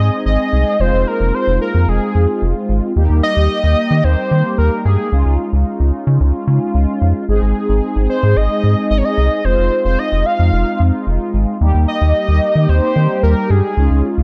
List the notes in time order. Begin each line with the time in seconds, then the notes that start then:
Already playing: G#3 C4 D#4 G#4 D#5
0.00 G#2
0.26 G#1 D#5
0.53 C2
0.80 F1 G#3 C4 D#4 F4 C5
0.93 F1
1.07 A#4
1.20 F1
1.34 C5
1.47 F1
1.61 A#4
1.75 F2
1.88 F1 G#4
2.15 F2
2.42 F1
2.69 G#1
2.96 D#2 G3 A#3 D#4 G4
3.10 D#2
3.23 D#5
3.37 D#2
3.64 D#2
3.91 D#3
4.04 D#2 C5
4.31 D#3
4.58 D#2 A#4
4.85 G2 G#4
5.12 C#2 G#3 C#4 D#4 F4
5.26 C#2
5.53 C#2
5.80 C#2
6.07 C#3
6.21 C#2
6.47 C#3
6.75 C#2
7.02 F2
7.29 G#1 G#3 C4 D#4 G#4
7.42 G#1
7.69 G#1
7.96 G#1
8.10 C5
8.23 G#2
8.37 G#1 D#5
8.64 G#2
8.91 G#1 D#5
8.98 C#5
9.05 D#5
9.18 C2
9.45 F1 G#3 C4 D#4 F4 C5
9.58 F1
9.85 F1 C5
9.99 D#5
10.12 F1
10.26 F5
10.39 F2
10.53 F1
10.80 F2
11.07 F1
11.34 G#1
11.61 D#2 G3 A#3 D#4 G4
11.75 D#2
11.88 D#5
12.02 D#2
12.28 D#2
12.56 D#3
12.69 D#2 C5
12.96 D#3
13.23 D#2 A#4
13.50 G2 G#4
13.77 C#2 G#3 C#4 D#4 F4
13.91 C#2
14.18 C#2